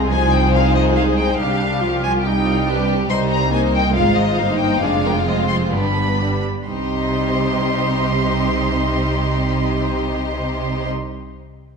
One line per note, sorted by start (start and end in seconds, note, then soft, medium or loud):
0.00 1.35 C2 soft
0.11 0.97 F3 soft
0.11 1.39 D#4 soft
0.11 0.53 G#4 soft
0.11 1.39 C5 soft
0.11 0.32 G#5 medium
0.34 0.55 G5 medium
0.54 1.38 G#4 soft
0.54 0.75 F5 medium
0.75 0.83 D#5 soft
0.97 1.39 G#3 soft
0.97 1.05 F5 medium
1.18 1.39 G5 medium
1.39 3.05 C2 soft
1.39 1.81 G3 soft
1.39 1.82 D4 soft
1.39 2.22 G4 soft
1.39 2.02 F5 medium
1.82 2.02 F3 soft
1.82 2.24 F4 soft
2.03 2.11 F3 soft
2.03 2.12 G#5 medium
2.23 2.66 G3 soft
2.23 2.67 D#4 soft
2.23 2.31 G4 soft
2.23 2.86 G5 soft
2.45 2.66 F4 soft
2.66 3.08 G3 soft
2.66 2.86 D4 soft
2.66 3.09 G4 soft
2.66 3.09 B4 soft
2.88 2.96 D4 soft
3.09 3.92 C2 soft
3.09 3.50 G3 soft
3.09 3.50 D#4 soft
3.09 3.51 D#4 soft
3.09 3.50 C5 soft
3.09 3.18 C6 medium
3.31 3.51 A#5 medium
3.51 3.94 A#3 soft
3.51 3.93 D#4 soft
3.51 4.79 D#4 soft
3.51 3.92 C5 soft
3.51 3.60 G#5 medium
3.74 3.94 G5 medium
3.94 4.37 G#1 soft
3.94 4.37 G#2 soft
3.94 4.37 G#3 soft
3.94 4.37 F4 soft
3.94 4.79 C5 soft
3.94 4.15 F5 medium
4.15 4.37 D#5 medium
4.37 4.81 G1 soft
4.37 4.82 G2 soft
4.37 4.82 A#3 soft
4.37 4.82 D#4 soft
4.37 4.59 F5 medium
4.59 4.81 G5 medium
4.81 5.70 F1 soft
4.81 5.70 F2 soft
4.81 5.25 G#3 soft
4.81 5.25 D4 soft
4.81 5.72 F4 soft
4.81 4.90 G#4 soft
4.81 5.10 F5 medium
5.04 5.12 A#4 soft
5.10 5.19 G5 soft
5.20 5.29 F5 soft
5.26 5.71 G#3 soft
5.26 5.71 C4 soft
5.26 5.71 C5 soft
5.26 5.39 D#5 soft
5.37 5.47 F5 soft
5.48 5.56 C6 medium
5.72 6.45 G1 soft
5.72 6.45 G2 soft
5.72 6.18 G3 soft
5.72 6.20 B3 soft
5.72 6.19 D4 soft
5.72 5.96 G4 soft
5.72 6.42 B5 medium
5.95 6.18 B4 soft
6.19 6.45 G3 soft
6.19 6.45 B3 soft
6.19 6.45 D4 soft
6.19 6.27 B4 soft
6.67 10.88 C2 soft
6.67 10.89 C3 soft
6.67 10.88 G3 soft
6.67 10.88 D#4 soft
6.67 10.88 G4 soft
6.67 10.88 D#5 soft
6.67 10.89 C6 soft